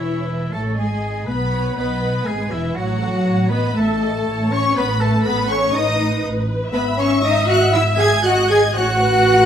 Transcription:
Already playing: double bass section E1, cello section E3, french horn section E3, violin section E4 E5, flute section E4, oboe E4, viola section C#5
0.27 viola section B4
0.50 double bass section A1, cello section A3, french horn section A3, flute section A4, violin section A4 A5, oboe A4, viola section C#5
0.76 double bass section G#1, cello section G#3, french horn section G#3, flute section G#4, violin section G#4 G#5, oboe G#4, viola section D#5
1.26 double bass section B1, cello section B3, french horn section B3, oboe B4, violin section B4 B5, flute section B4, viola section B4
1.52 viola section C#5
1.76 double bass section B1, french horn section B3, cello section B3, oboe B4, violin section B4 B5, flute section B4, viola section D#5
2.25 double bass section G#1, french horn section G#3, cello section G#3, oboe G#4, flute section G#4, violin section G#4 G#5, viola section B4
2.51 double bass section E1, french horn section E3, cello section E3, oboe E4, violin section E4 E5, flute section E4
2.76 double bass section A1, cello section F#3, french horn section F#3, violin section F#4 F#5, oboe F#4, flute section F#4, viola section C#5
3.01 viola section A4
3.25 double bass section A1, viola section C#5
3.49 cello section B3, french horn section B3, oboe B4, violin section B4 B5, flute section B4, viola section D#5
3.75 double bass section A1, french horn section A3, cello section A3, violin section A4 A5, oboe A4, flute section A4, viola section E5
4.02 viola section D#5
4.27 double bass section A1, viola section C#5
4.50 french horn section C#4, cello section C#4, violin section C#5 C#6, flute section C#5, oboe C#5
4.74 double bass section A1, french horn section B3, cello section B3, flute section B4, violin section B4 B5, viola section B4, oboe B4
4.99 cello section A3, french horn section A3, flute section A4, oboe A4, violin section A4 A5
5.24 double bass section A1, french horn section B3, cello section B3, viola section A4, flute section B4, violin section B4 B5, oboe B4
5.48 french horn section C#4, cello section C#4, flute section C#5, violin section C#5 C#6, oboe C#5
5.73 double bass section A1, french horn section D#4, cello section D#4, viola section B4, violin section D#5 D#6, flute section D#5, oboe D#5
6.24 double bass section A1
6.72 double bass section G#1, french horn section B3, cello section B3, flute section B4, violin section B4 B5, oboe B4, viola section E5
6.97 french horn section C#4, cello section C#4, violin section C#5 C#6, oboe C#5, flute section C#5
7.22 french horn section D#4, cello section D#4, violin section D#5 D#6, oboe D#5, flute section D#5
7.46 french horn section F#4, cello section F#4, violin section F#5 F#6, flute section F#5, oboe F#5
7.72 french horn section E4, cello section E4, violin section E5 E6, flute section E5
7.76 oboe E5
7.97 french horn section G#4, cello section G#4, violin section G#5 G#6, flute section G#5
8.01 oboe G#5
8.24 french horn section F#4, cello section F#4, viola section D#5, violin section F#5 F#6, flute section F#5, oboe F#5
8.49 french horn section G#4, cello section G#4, flute section G#5, violin section G#5 G#6, oboe G#5
8.74 double bass section A1, french horn section F#4, cello section F#4, viola section C#5, violin section F#5 F#6, flute section F#5, oboe F#5
9.00 viola section B4

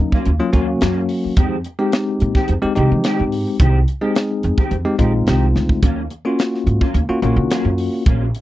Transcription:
Already playing: tine electric piano F#3 A#3 C#4 D#4
0.00 muted clean electric guitar stroke
0.12 clean electric guitar F#3 A#3 C#4 F4, muted upright bass stroke, kick
0.26 upright bass D#2, closed hi-hat
0.40 tine electric piano F#3 A#3 C#4 F4, muted clean electric guitar stroke
0.52 upright bass D#2, tine electric piano F#3 A#3 C#4 F#4, clean electric guitar F#3 A#3 C#4 F4, kick, closed hi-hat
0.69 muted clean electric guitar stroke
0.81 upright bass F#2, clean electric guitar F#3 A#3 C#4 F4, snare, closed hi-hat
1.09 muted clean electric guitar stroke, open hi-hat
1.24 muted clean electric guitar stroke, muted upright bass stroke
1.37 upright bass F2, clean electric guitar D#3 G#3 C4 G4, kick, closed hi-hat
1.64 muted clean electric guitar stroke, closed hi-hat
1.79 tine electric piano G#3 C4 D#4 G4, clean electric guitar G#3 C4 G4
1.92 muted clean electric guitar stroke, snare, closed hi-hat
2.09 muted clean electric guitar stroke
2.20 upright bass A#2, muted clean electric guitar stroke, closed hi-hat
2.35 clean electric guitar D#3 G#3 C4 G4, muted upright bass stroke, kick, snare
2.48 upright bass F2, closed hi-hat
2.62 tine electric piano G#3 C4 D#4 G4, muted upright bass stroke, muted clean electric guitar stroke
2.75 upright bass C2, clean electric guitar D#3 G#3 C4 G4, tine electric piano G#3 C4 D#4 G4, closed hi-hat
2.92 upright bass F3, muted clean electric guitar stroke
3.04 clean electric guitar D#3 G#3 C4 G4, snare, closed hi-hat
3.20 upright bass G#2
3.32 muted clean electric guitar stroke, open hi-hat
3.47 muted clean electric guitar stroke
3.60 upright bass C2, clean electric guitar D#3 G#3 C4 G4, kick, closed hi-hat
3.88 muted clean electric guitar stroke, closed hi-hat
4.01 tine electric piano G#3 C4 D#4 G#4, clean electric guitar G#3 C4 G4
4.15 muted clean electric guitar stroke, snare, closed hi-hat
4.30 muted clean electric guitar stroke
4.43 upright bass F2, muted clean electric guitar stroke, closed hi-hat
4.58 clean electric guitar D#3 G#3 C4 G4, muted upright bass stroke, kick
4.71 upright bass F2, closed hi-hat
4.85 tine electric piano G#3 C4 D#4 G4, muted clean electric guitar stroke
4.99 upright bass A#1, clean electric guitar D#3 G#3 C4 G4, tine electric piano G#3 C4 D#4 F4, kick, closed hi-hat
5.14 muted clean electric guitar stroke
5.27 upright bass C2, clean electric guitar D#3 G#3 C4 G4, snare, closed hi-hat
5.55 upright bass D2, muted clean electric guitar stroke, snare
5.69 muted clean electric guitar stroke, kick
5.82 upright bass D#2, clean electric guitar F#3 A#3 C#4 F4, kick, closed hi-hat
6.10 muted clean electric guitar stroke, closed hi-hat
6.25 tine electric piano A#3 C#4 F4 F#4, clean electric guitar A#3 C#4 F4
6.39 muted clean electric guitar stroke, snare, closed hi-hat
6.54 muted clean electric guitar stroke, snare
6.67 upright bass G#2, muted clean electric guitar stroke, closed hi-hat
6.81 clean electric guitar F#3 A#3 C#4 F4, muted upright bass stroke, kick
6.94 upright bass D#2, closed hi-hat
7.09 tine electric piano A#3 C#4 F4 F#4, muted upright bass stroke, muted clean electric guitar stroke
7.22 upright bass A#1, clean electric guitar F#3 A#3 C#4 F4, tine electric piano A#3 C#4 F4 F#4, closed hi-hat
7.36 upright bass D#3, muted clean electric guitar stroke
7.51 clean electric guitar F#3 A#3 C#4 F4, snare, closed hi-hat
7.65 upright bass F#2
7.78 muted clean electric guitar stroke, open hi-hat
7.94 muted clean electric guitar stroke
8.06 upright bass A#1, clean electric guitar F#3 A#3 C#4 F4, kick, closed hi-hat
8.35 muted clean electric guitar stroke, closed hi-hat

